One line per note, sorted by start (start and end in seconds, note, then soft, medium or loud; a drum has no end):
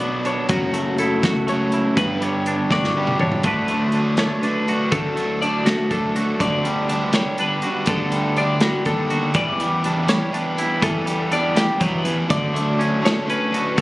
0.00 0.37 B1 medium
0.00 0.46 B2 medium
0.00 0.48 B2 medium
0.00 0.51 F#3 medium
0.00 0.49 B3 medium
0.00 0.24 D4 medium
0.00 0.49 D4 medium
0.00 1.03 F#4 medium
0.00 0.25 D5 medium
0.00 closed hi-hat medium
0.25 0.47 D4 medium
0.25 0.50 C#5 medium
0.25 closed hi-hat medium
0.49 1.11 F#1 medium
0.49 1.46 F#2 medium
0.49 1.46 C#3 medium
0.49 1.49 F#3 medium
0.49 1.50 A3 medium
0.49 1.48 C#4 medium
0.49 0.99 F#4 medium
0.49 kick loud
0.49 closed hi-hat medium
0.73 1.47 A3 medium
0.73 closed hi-hat medium
0.98 1.72 E4 medium
0.98 1.48 A4 medium
0.98 closed hi-hat medium
1.23 1.85 C#2 medium
1.23 1.99 F#4 medium
1.23 kick medium
1.23 snare loud
1.23 closed hi-hat medium
1.48 1.95 F#2 medium
1.48 1.96 C#3 medium
1.48 1.98 F#3 medium
1.48 1.99 A3 medium
1.48 1.97 C#4 medium
1.48 1.97 C#5 medium
1.48 closed hi-hat medium
1.72 1.94 E4 medium
1.72 closed hi-hat medium
1.97 2.59 G1 medium
1.97 2.94 G2 medium
1.97 2.94 D3 medium
1.97 2.94 G3 medium
1.97 2.95 B3 medium
1.97 2.95 D4 medium
1.97 2.23 B4 medium
1.97 kick loud
1.97 closed hi-hat medium
2.21 2.95 G3 medium
2.21 2.71 C#5 medium
2.21 closed hi-hat medium
2.46 3.20 D4 medium
2.46 closed hi-hat medium
2.70 3.32 G1 medium
2.70 3.42 F#4 medium
2.70 3.20 D5 medium
2.70 kick medium
2.70 snare soft
2.84 snare soft
2.96 3.43 G2 medium
2.96 3.42 D3 medium
2.96 3.44 G3 medium
2.96 3.44 B3 medium
2.96 3.44 D4 medium
3.07 mid tom medium
3.19 3.42 D4 medium
3.19 3.45 C#5 medium
3.19 mid tom medium
3.32 floor tom medium
3.43 4.27 D2 medium
3.43 3.68 D3 medium
3.43 3.69 F#3 medium
3.43 3.69 A3 medium
3.43 3.68 D4 medium
3.43 4.69 F#4 medium
3.43 5.19 B4 medium
3.43 3.94 D5 medium
3.43 kick medium
3.43 closed hi-hat medium
3.68 3.92 D3 medium
3.68 3.93 F#3 medium
3.68 3.93 A3 medium
3.68 3.93 D4 medium
3.68 closed hi-hat medium
3.92 4.18 D3 medium
3.92 4.18 F#3 medium
3.92 4.17 A3 medium
3.92 4.17 D4 medium
3.92 closed hi-hat soft
4.17 4.41 D3 medium
4.17 4.42 F#3 medium
4.17 4.42 A3 medium
4.17 4.43 D4 medium
4.17 4.42 C#5 medium
4.17 snare medium
4.17 closed hi-hat medium
4.42 4.67 D3 medium
4.42 4.67 F#3 medium
4.42 4.67 A3 medium
4.42 4.66 D4 medium
4.42 4.92 B4 medium
4.42 closed hi-hat soft
4.68 4.90 D3 soft
4.68 4.91 F#3 medium
4.68 4.92 A3 medium
4.68 4.92 D4 medium
4.68 6.15 F#4 soft
4.68 closed hi-hat soft
4.92 5.74 D2 medium
4.92 5.16 D3 medium
4.92 5.16 F#3 medium
4.92 5.15 A3 medium
4.92 5.14 D4 medium
4.92 5.41 A4 medium
4.92 kick medium
4.92 closed hi-hat medium
5.16 5.40 D3 medium
5.16 5.40 F#3 medium
5.16 5.40 A3 medium
5.16 5.41 D4 medium
5.16 closed hi-hat soft
5.41 5.66 D3 medium
5.41 5.65 F#3 medium
5.41 5.65 A3 medium
5.41 5.65 D4 medium
5.41 5.66 D5 medium
5.41 closed hi-hat soft
5.66 5.90 D3 soft
5.66 5.91 F#3 medium
5.66 5.91 A3 medium
5.66 5.91 D4 medium
5.66 5.90 F#4 medium
5.66 snare loud
5.66 closed hi-hat medium
5.91 6.32 D2 medium
5.91 6.15 D3 medium
5.91 6.15 F#3 medium
5.91 6.15 A3 medium
5.91 6.14 D4 medium
5.91 6.40 A4 medium
5.91 kick medium
5.91 closed hi-hat medium
6.15 6.38 D3 medium
6.15 6.40 F#3 medium
6.15 6.40 A3 medium
6.15 6.39 D4 medium
6.15 6.67 F#4 medium
6.15 closed hi-hat medium
6.39 7.23 D2 medium
6.39 6.64 D3 medium
6.39 6.65 G3 medium
6.39 6.64 B3 medium
6.39 6.63 D4 medium
6.39 6.90 D5 medium
6.39 kick medium
6.39 closed hi-hat medium
6.64 6.89 D3 medium
6.64 6.89 G3 medium
6.64 6.89 B3 medium
6.64 6.89 D4 medium
6.64 closed hi-hat medium
6.89 7.14 D3 medium
6.89 7.14 G3 medium
6.89 7.13 B3 medium
6.89 7.13 D4 medium
6.89 closed hi-hat medium
7.13 7.38 D3 medium
7.13 7.39 G3 medium
7.13 7.38 B3 medium
7.13 7.38 D4 medium
7.13 7.39 C#5 medium
7.13 snare medium
7.13 closed hi-hat medium
7.38 7.64 D3 medium
7.38 7.64 G3 medium
7.38 7.64 B3 medium
7.38 7.64 D4 medium
7.38 7.89 B4 medium
7.38 closed hi-hat medium
7.62 7.88 D3 medium
7.62 7.88 G3 medium
7.62 7.89 B3 medium
7.62 7.89 D4 medium
7.62 7.85 F#4 medium
7.62 closed hi-hat medium
7.86 8.70 D2 medium
7.86 8.13 D3 medium
7.86 8.13 G3 medium
7.86 8.38 A4 medium
7.86 kick medium
7.86 closed hi-hat medium
7.90 8.13 B3 medium
7.90 8.13 D4 medium
8.12 8.38 G3 medium
8.12 8.38 B3 medium
8.12 8.38 D4 medium
8.12 closed hi-hat medium
8.16 8.38 D3 medium
8.37 8.63 D3 medium
8.37 8.63 G3 medium
8.37 8.63 B3 medium
8.37 8.63 D4 medium
8.37 8.62 D5 medium
8.37 closed hi-hat soft
8.60 8.88 D4 medium
8.60 8.86 F#4 medium
8.60 snare loud
8.60 closed hi-hat medium
8.65 8.86 D3 medium
8.65 8.87 G3 medium
8.65 8.88 B3 medium
8.85 9.27 D#2 medium
8.85 9.12 D3 medium
8.85 9.11 G3 medium
8.85 9.11 B3 medium
8.85 9.11 D4 medium
8.85 9.35 A4 medium
8.85 kick medium
8.85 closed hi-hat soft
9.10 9.36 D3 medium
9.10 9.35 G3 medium
9.10 9.36 B3 medium
9.10 9.36 D4 medium
9.10 9.32 F#4 soft
9.10 closed hi-hat soft
9.34 10.18 E2 medium
9.34 9.60 E3 medium
9.34 9.60 G3 medium
9.34 9.60 B3 medium
9.34 9.59 E4 medium
9.34 9.85 D5 medium
9.34 kick medium
9.34 closed hi-hat medium
9.60 9.82 E3 medium
9.60 9.83 G3 medium
9.60 9.83 B3 medium
9.60 9.83 E4 medium
9.60 closed hi-hat soft
9.84 10.08 E3 medium
9.84 10.08 G3 medium
9.84 10.07 B3 medium
9.84 10.33 D4 medium
9.84 10.07 E4 medium
9.84 closed hi-hat medium
10.08 10.30 E3 medium
10.08 10.31 G3 medium
10.08 10.31 B3 medium
10.08 10.32 E4 medium
10.08 10.33 C#5 medium
10.08 snare medium
10.08 closed hi-hat medium
10.31 10.57 E3 medium
10.31 10.57 G3 medium
10.31 10.57 B3 medium
10.31 10.85 D4 medium
10.31 10.56 E4 medium
10.31 10.83 B4 medium
10.31 closed hi-hat medium
10.57 10.81 E3 medium
10.57 10.82 G3 medium
10.57 10.82 B3 medium
10.57 10.82 E4 medium
10.57 closed hi-hat medium
10.82 11.65 E2 medium
10.82 11.08 E3 medium
10.82 11.07 G3 medium
10.82 11.07 B3 medium
10.82 11.07 E4 medium
10.82 11.33 A4 medium
10.82 kick loud
10.82 closed hi-hat medium
11.07 11.31 E3 medium
11.07 11.31 G3 medium
11.07 11.31 B3 medium
11.07 11.32 E4 medium
11.07 closed hi-hat medium
11.32 11.56 E3 medium
11.32 11.55 G3 medium
11.32 11.55 B3 medium
11.32 12.79 D4 medium
11.32 11.55 E4 medium
11.32 11.57 D5 medium
11.32 closed hi-hat medium
11.56 11.80 E3 medium
11.56 11.80 G3 medium
11.56 11.81 B3 medium
11.56 11.81 E4 medium
11.56 11.82 G4 medium
11.56 snare loud
11.56 closed hi-hat medium
11.80 12.22 E2 medium
11.80 12.04 E3 medium
11.80 12.05 F#3 medium
11.80 12.04 G3 medium
11.80 12.04 B3 medium
11.80 12.04 E4 medium
11.80 12.31 B4 medium
11.80 kick medium
11.80 closed hi-hat medium
12.05 12.29 E3 medium
12.05 12.30 G3 medium
12.05 12.29 B3 medium
12.05 12.30 E4 medium
12.05 closed hi-hat medium
12.30 13.13 D2 medium
12.30 12.54 D3 medium
12.30 12.53 F#3 medium
12.30 12.53 A3 medium
12.30 12.52 D4 medium
12.30 12.80 D5 medium
12.30 kick loud
12.30 closed hi-hat medium
12.54 12.77 D3 medium
12.54 12.77 F#3 medium
12.54 12.78 A3 medium
12.54 12.78 D4 medium
12.54 closed hi-hat medium
12.78 13.02 D3 medium
12.78 13.01 F#3 medium
12.78 13.01 A3 medium
12.78 13.28 C#4 medium
12.78 13.00 D4 medium
12.78 closed hi-hat medium
13.01 13.25 D3 medium
13.01 13.26 F#3 medium
13.01 13.26 A3 medium
13.01 13.26 D4 medium
13.05 13.29 C#5 medium
13.05 snare loud
13.05 closed hi-hat medium
13.26 13.52 D3 medium
13.26 13.51 F#3 medium
13.26 13.51 A3 medium
13.26 13.76 C#4 medium
13.26 13.51 D4 medium
13.26 closed hi-hat medium
13.30 13.79 B4 medium
13.52 13.75 D3 medium
13.52 13.76 F#3 medium
13.52 13.77 A3 medium
13.52 13.77 D4 medium
13.52 13.81 F#4 medium
13.52 closed hi-hat medium
13.76 13.81 D3 medium
13.76 13.81 F#3 medium
13.76 13.81 A3 medium
13.76 13.81 D4 medium
13.76 kick loud
13.76 closed hi-hat medium